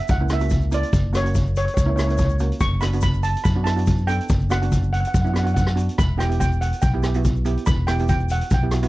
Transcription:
0.08 fingered electric bass C#2, steel pan F#5, kick, closed hi-hat, shaker
0.20 steel pan A#3 C#4 E4
0.29 steel pan A#3 C#4 E4, cross-stick, closed hi-hat, shaker
0.33 steel pan E5
0.40 steel pan A#3 C#4 F#4, closed hi-hat, shaker
0.50 kick, closed hi-hat, shaker
0.61 shaker
0.71 steel pan A#3 C#4 E4 D5, closed hi-hat, shaker
0.83 closed hi-hat
0.93 fingered electric bass F#1, kick, closed hi-hat, shaker
1.13 steel pan A#3 C#4 F#4 C#5, cross-stick, closed hi-hat, shaker
1.24 steel pan A#3 C#4 F#4, closed hi-hat, shaker
1.35 kick, closed hi-hat, shaker
1.47 shaker
1.56 steel pan C#5, closed hi-hat, shaker
1.65 steel pan C#5, closed hi-hat, shaker
1.74 fingered electric bass C#2, steel pan C#5, kick, closed hi-hat, shaker
1.81 steel pan C#5
1.86 steel pan A#3 C#4 E4 C#5
1.96 steel pan A#3 C#4 E4 C#5, cross-stick, closed hi-hat, shaker
2.04 steel pan A#3 C#4 C#5
2.08 steel pan E4 C#5, closed hi-hat, shaker
2.17 steel pan C#5, kick, closed hi-hat, shaker
2.25 steel pan C#5
2.29 shaker
2.39 steel pan A#3 C#4 F#4, closed hi-hat, shaker
2.52 closed hi-hat
2.60 fingered electric bass F#1, steel pan C#6, kick, closed hi-hat, shaker
2.81 steel pan B3 D4 F#4 B5, cross-stick, closed hi-hat, shaker
2.92 steel pan B3 D4 F#4, closed hi-hat, shaker
3.01 steel pan B5, kick, closed hi-hat, shaker
3.14 shaker
3.23 steel pan A5, closed hi-hat, shaker
3.35 closed hi-hat, shaker
3.44 fingered electric bass F#2, steel pan B5, kick, closed hi-hat, shaker
3.55 steel pan B3 D4 F#4
3.64 steel pan B3 D4 E4 A5, cross-stick, closed hi-hat, shaker
3.76 steel pan B3 D4 F#4, closed hi-hat, shaker
3.86 kick, closed hi-hat, shaker
3.98 shaker
4.07 steel pan B3 D4 A4 G5, closed hi-hat, shaker
4.20 closed hi-hat
4.29 fingered electric bass F#1, kick, closed hi-hat, shaker
4.40 shaker
4.50 steel pan B3 D4 F#4 F#5, cross-stick, closed hi-hat, shaker
4.62 steel pan B3 D4 F#4, closed hi-hat
4.72 kick, closed hi-hat, shaker
4.83 shaker
4.93 steel pan F#5, closed hi-hat
5.01 steel pan F#5
5.05 steel pan F#5, closed hi-hat, shaker
5.14 fingered electric bass F#2, kick, closed hi-hat, shaker
5.22 steel pan B3 D4 E4 F#5
5.26 steel pan F#5, shaker
5.33 steel pan B3 D4 F#4, cross-stick, closed hi-hat, shaker
5.39 steel pan F#5
5.44 steel pan B3 D4 F#4 F#5, closed hi-hat
5.48 shaker
5.54 steel pan F#5, kick, closed hi-hat, shaker
5.61 steel pan F#5
5.67 cross-stick, shaker
5.75 steel pan B3 D4 F#4, closed hi-hat, shaker
5.89 closed hi-hat, shaker
5.98 fingered electric bass E1, steel pan B5, kick, closed hi-hat, shaker
6.17 steel pan B3 E4 G4 G5, cross-stick, closed hi-hat, shaker
6.29 steel pan B3 E4 G4, closed hi-hat, shaker
6.40 steel pan G5, kick, closed hi-hat, shaker
6.52 shaker
6.61 steel pan F#5, closed hi-hat, shaker
6.73 closed hi-hat, shaker
6.82 fingered electric bass B1, steel pan G5, kick, closed hi-hat, shaker
6.94 steel pan B3 E4 G4
7.03 steel pan B3 E4 G4, cross-stick, closed hi-hat, shaker
7.14 steel pan B3 E4 F#4, closed hi-hat, shaker
7.24 kick, closed hi-hat, shaker
7.36 shaker
7.45 steel pan B3 E4 G4, closed hi-hat, shaker
7.57 closed hi-hat
7.66 fingered electric bass E1, steel pan B5, kick, closed hi-hat, shaker
7.87 steel pan B3 E4 G4 G5, cross-stick, closed hi-hat, shaker
7.99 steel pan B3 E4 G4, closed hi-hat, shaker
8.09 steel pan G5, kick, closed hi-hat, shaker
8.20 shaker
8.29 steel pan F#5, closed hi-hat, shaker
8.41 closed hi-hat
8.50 fingered electric bass B1, steel pan G5, kick, closed hi-hat, shaker
8.63 steel pan B3 E4 G4
8.71 steel pan B3 E4 F#4, cross-stick, closed hi-hat, shaker
8.83 steel pan B3 E4 F#4, closed hi-hat, shaker

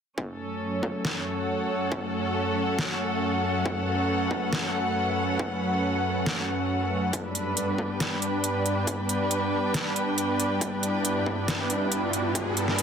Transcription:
0.18 supersaw synth F#2 F#3 A3 C#4 C#5, string section C#4, kick
0.27 string section A4
0.83 kick
1.05 snare
1.33 string section F#5
1.92 kick
2.79 snare
3.66 supersaw synth B4, kick
4.31 kick
4.53 snare
5.39 kick
6.26 snare
7.13 supersaw synth G2 G3 B3 D4 D5, string section D4, kick, closed hi-hat
7.21 string section B4
7.35 closed hi-hat
7.57 closed hi-hat
7.74 string section G5
7.78 kick
8.00 snare, closed hi-hat
8.22 closed hi-hat
8.44 closed hi-hat
8.66 closed hi-hat
8.87 kick, closed hi-hat
9.09 closed hi-hat
9.31 closed hi-hat
9.74 snare, closed hi-hat
9.96 closed hi-hat
10.18 closed hi-hat
10.40 closed hi-hat
10.61 supersaw synth E4, kick, closed hi-hat, riser
10.83 closed hi-hat
11.05 closed hi-hat
11.26 kick
11.48 snare, closed hi-hat
11.70 closed hi-hat
11.92 closed hi-hat
12.13 closed hi-hat
12.35 kick, closed hi-hat
12.57 closed hi-hat
12.68 snare
12.79 closed hi-hat

